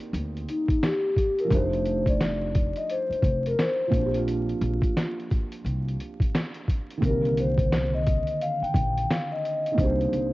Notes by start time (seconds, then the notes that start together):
Already playing: A#3 C4 D#4 G4 D5
0.00 closed hi-hat
0.13 D2, closed hi-hat
0.37 closed hi-hat
0.49 D#4, closed hi-hat
0.68 kick, closed hi-hat
0.83 G4, snare, closed hi-hat
1.16 kick, closed hi-hat
1.39 A#4, closed hi-hat
1.44 F3 G3
1.50 F1 A3 D4 D#4 C5, kick, closed hi-hat
1.56 G4
1.73 closed hi-hat
1.85 closed hi-hat
2.06 D5, kick, closed hi-hat
2.21 snare, closed hi-hat
2.55 kick, closed hi-hat
2.76 D#5, closed hi-hat
2.90 C5, closed hi-hat
3.10 muted upright bass stroke, closed hi-hat
3.22 F1, kick, closed hi-hat
3.46 A#4, closed hi-hat
3.59 C5, snare, closed hi-hat
3.88 F3 A#3
3.92 A#1 C4, kick, closed hi-hat
3.97 D4 F#4
4.06 G4
4.14 F4, closed hi-hat
4.28 closed hi-hat
4.49 closed hi-hat
4.61 A#1, closed hi-hat
4.82 kick, closed hi-hat
4.97 snare, closed hi-hat
5.20 closed hi-hat
5.31 kick, closed hi-hat
5.52 closed hi-hat
5.64 C2, closed hi-hat
5.88 closed hi-hat
6.00 closed hi-hat
6.20 kick, closed hi-hat
6.35 snare, closed hi-hat
6.54 closed hi-hat
6.68 kick, closed hi-hat
6.90 closed hi-hat
6.97 D#3 A#3
7.02 C2 C4 A#4, kick, closed hi-hat
7.06 D3 G4
7.25 closed hi-hat
7.37 C5, closed hi-hat
7.58 kick, closed hi-hat
7.72 snare, closed hi-hat
7.94 D#5
8.07 kick, closed hi-hat
8.27 closed hi-hat
8.41 F5, closed hi-hat
8.62 G5, muted upright bass stroke, closed hi-hat
8.74 A#1, kick, closed hi-hat
8.97 closed hi-hat
9.10 F5, snare, closed hi-hat
9.32 D#5
9.45 closed hi-hat
9.66 closed hi-hat
9.72 A#3 D#4
9.78 C2 C4 D4 C5, kick, closed hi-hat
9.84 G4
10.01 closed hi-hat
10.13 C2, closed hi-hat